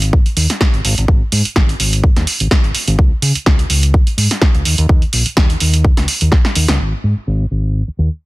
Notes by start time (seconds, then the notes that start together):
Already playing: G#1
0.02 closed hi-hat
0.13 kick
0.26 muted fingered electric bass stroke, closed hi-hat
0.37 D#2, open hi-hat
0.50 snare, closed hi-hat
0.61 kick, snare
0.74 G#1, closed hi-hat
0.85 G#1, open hi-hat
0.98 G#1, closed hi-hat
1.08 G#1, kick
1.22 muted fingered electric bass stroke
1.32 G#2, open hi-hat
1.45 muted fingered electric bass stroke, closed hi-hat
1.56 G#1, kick, snare
1.69 closed hi-hat
1.80 G#1, open hi-hat
1.93 closed hi-hat
2.04 kick
2.16 D#2, snare, closed hi-hat
2.27 open hi-hat
2.40 G#1, closed hi-hat
2.51 kick, snare
2.64 G#1, closed hi-hat
2.75 muted fingered electric bass stroke, open hi-hat
2.88 G#1, closed hi-hat
2.99 C#2, kick
3.11 muted fingered electric bass stroke
3.22 C#3, open hi-hat
3.35 muted fingered electric bass stroke, closed hi-hat
3.46 C#2, kick, snare
3.59 closed hi-hat
3.70 C#2, open hi-hat
3.83 closed hi-hat
3.94 kick
4.07 muted fingered electric bass stroke, closed hi-hat
4.17 G#2, open hi-hat
4.31 snare, closed hi-hat
4.42 kick, snare
4.55 C#2, closed hi-hat
4.65 D#2, open hi-hat
4.78 D#2, closed hi-hat
4.89 D#2, kick
5.02 muted fingered electric bass stroke, closed hi-hat
5.13 A#1, open hi-hat
5.26 muted fingered electric bass stroke, closed hi-hat
5.37 D#2, kick, snare
5.50 closed hi-hat
5.60 D#2, open hi-hat
5.74 closed hi-hat
5.85 kick
5.97 C#2, snare, closed hi-hat
6.08 open hi-hat
6.21 D#2, closed hi-hat
6.32 kick, snare
6.45 snare, closed hi-hat
6.55 D#2, open hi-hat
6.68 C#2, snare, closed hi-hat
6.80 G#1
6.93 muted fingered electric bass stroke
7.04 G#2
7.17 muted fingered electric bass stroke
7.27 G#1
7.51 G#1
7.88 muted fingered electric bass stroke
7.99 D#2